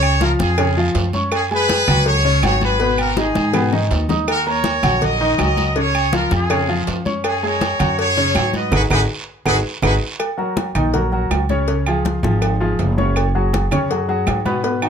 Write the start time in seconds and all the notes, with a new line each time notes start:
Already playing: C#2 C#3 C#4 G#4 C#5
0.03 high conga, low agogo, claves
0.21 F3 F4 A#4 F5, cowbell, high conga, low timbale, short guiro
0.39 F2 F4 G#4, high conga, low agogo, short guiro
0.58 C#3 C#4 C#5, cowbell, high conga, low agogo, long guiro, claves
0.77 F3 F4 F5, high conga
0.95 F#2, cowbell, high conga, low timbale, low agogo, short guiro
1.13 C#4 C#5 C#6, high conga, short guiro
1.32 C#4 G#4, cowbell, high conga, low agogo, long guiro, claves
1.51 G#3 G#4 B4 G#5, high conga
1.69 cowbell, high conga, low timbale, low agogo, short guiro
1.88 C#2 F#3 F#4 F#5, cowbell, high conga, low conga, low agogo, short guiro, claves
2.06 G#4 C#5, cowbell, long guiro
2.25 C#3 C#4 C#5, high conga
2.43 G#1 F#3 F#4 G#4 C#5 F#5, cowbell, high conga, low timbale, low agogo, short guiro, claves
2.61 G#4 B4, high conga, low agogo, short guiro
2.80 B2 B3 B4, cowbell, high conga, long guiro
2.98 F#4 A#4, high conga, low agogo, claves
3.17 D#3 D#4 G#4 D#5, cowbell, high bongo, high conga, low timbale, short guiro
3.35 G#2, high conga, low agogo, short guiro
3.54 B2 B3 B4, cowbell, low bongo, high conga, low agogo, long guiro, claves
3.72 D#3 D#4 D#5, low bongo, high conga
3.91 D#2, cowbell, high conga, low timbale, low agogo, short guiro
4.09 D#4 D#5 D#6, low bongo, high conga, short guiro
4.28 F#4 A#4, cowbell, high conga, low agogo, long guiro, claves
4.46 A#3 A#4 C#5 A#5, high conga
4.64 cowbell, high conga, low timbale, low agogo, short guiro
4.83 A#1 F#3 F#4 F#5, cowbell, high conga, low conga, low agogo, short guiro, claves
5.01 A#4 D#5, cowbell, high conga, low conga, long guiro
5.20 D#3 D#4 D#5, high conga
5.38 C#2 F#3 F#4 A#4 D#5 F#5, cowbell, high conga, low timbale, low agogo, short guiro, claves
5.57 high conga, low agogo, short guiro
5.76 C#3 C#4 G#4 C#5, cowbell, high conga, long guiro
5.94 high conga, low agogo, claves
6.13 F3 F4 A#4 F5, cowbell, high conga, low timbale, short guiro
6.31 F2 F4 G#4, high conga, low agogo, short guiro
6.50 C#3 C#4 C#5, cowbell, high conga, low agogo, long guiro, claves
6.68 F3 F4 F5, high conga
6.87 F#2, cowbell, high conga, low timbale, low agogo, short guiro
7.05 C#4 C#5 C#6, high conga, short guiro
7.24 C#4 G#4, cowbell, high conga, low agogo, long guiro, claves
7.43 G#3 G#4 A#4 C#5 G#5, high conga
7.61 cowbell, high conga, low timbale, low agogo, short guiro
7.79 F#2 F#3 F#4 F#5, cowbell, high conga, low conga, low agogo, short guiro, claves
7.98 G#4 C#5, cowbell, high conga, long guiro
8.16 C#3 C#4 C#5, high conga
8.35 G#2 F#3 F#4 F#5, cowbell, high conga, low timbale, low agogo, short guiro, claves
8.53 B4 D#5, high conga, low agogo, short guiro
8.72 G#1 D#4 F#4 G#4 B4, cowbell, low conga, high timbale, long guiro, claves
8.90 G#1 D#4 F#4 G#4 B4, cowbell, low conga, high timbale, long guiro, claves
9.45 G#1 D#4 F#4 G#4 B4, cowbell, low conga, high timbale, long guiro, claves
9.82 G#1 D#4 F#4 G#4 B4, cowbell, low conga, high timbale, long guiro, claves
10.20 cowbell, high conga, low agogo, claves
10.38 F#3 F#4 A#4, high conga
10.57 cowbell, high conga, low timbale, low agogo
10.75 A#1 D#3 D#4 D#5, cowbell, high conga, low conga, low agogo, claves
10.94 F#3 F#4 A#4, cowbell, high conga, low conga
11.12 F#3 F#4 A#4, high conga
11.31 C#2, cowbell, high conga, low timbale, low agogo, claves
11.49 C#3 C#4 C#5, high conga, low agogo
11.68 C#3 C#4 C#5, cowbell, high conga
11.86 F3 F4 G#4, high conga, low agogo, claves
12.05 cowbell, high conga, low timbale
12.23 G#1 F3 F4 G#4, high conga, low agogo
12.42 cowbell, high conga, low agogo, claves
12.60 F3 F4 G#4, high conga
12.79 F#1, cowbell, high conga, low timbale, low agogo
12.98 C#3 C#4 C#5, high conga
13.16 cowbell, high conga, low agogo, claves
13.35 F#3 F#4 G#4, high conga
13.54 cowbell, high conga, low timbale, low agogo
13.71 F#2 C#3 C#4 C#5, cowbell, high conga, low conga, low agogo, claves
13.90 F#3 F#4 G#4, cowbell, high conga
14.08 F#3 F#4 G#4, high conga
14.27 G#2, cowbell, high conga, low timbale, low agogo, claves
14.45 B2 B3 B4, high conga, low agogo
14.63 B2 B3 B4, cowbell, high conga
14.82 D#3 D#4 F#4, high conga, low agogo, claves